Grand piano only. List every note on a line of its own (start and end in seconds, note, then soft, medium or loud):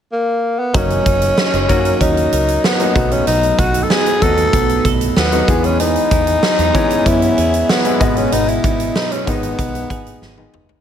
0.74 1.56 F#3 medium
0.74 1.57 A#3 medium
0.74 1.57 C#4 medium
0.74 1.57 D#4 medium
1.69 2.65 F#3 medium
1.69 2.65 A#3 medium
1.69 2.65 C#4 medium
1.69 2.66 F#4 loud
2.79 2.93 F#3 medium
2.79 2.95 A#3 medium
2.79 2.96 C#4 medium
2.79 2.95 D#4 medium
2.95 4.05 F#3 medium
2.95 4.05 A3 medium
2.95 4.05 B3 medium
2.95 4.06 D#4 medium
4.21 5.17 F#3 medium
4.21 5.18 A3 medium
4.21 5.18 B3 medium
4.21 5.18 F#4 medium
5.31 5.48 F#3 medium
5.31 5.48 A3 medium
5.31 5.47 B3 medium
5.31 5.48 D#4 medium
5.48 6.58 E3 medium
5.48 6.58 G#3 medium
5.48 6.58 B3 medium
5.48 6.58 G#4 medium
6.74 7.70 E3 medium
6.74 7.70 G#3 medium
6.74 7.71 B3 medium
6.74 7.71 C#4 medium
7.85 8.01 E3 medium
7.85 7.99 G#3 medium
7.85 8.00 B3 medium
7.85 8.01 E4 medium
8.00 9.10 B2 medium
8.00 9.10 G#3 medium
8.00 9.11 B3 medium
8.00 9.11 D#5 medium
9.26 10.23 D#3 medium
9.26 10.23 G#3 medium
9.26 10.23 B3 medium
9.26 10.23 D#4 medium
10.37 10.79 D#3 medium
10.37 10.79 G#3 medium
10.37 10.79 B3 medium
10.37 10.79 D#4 medium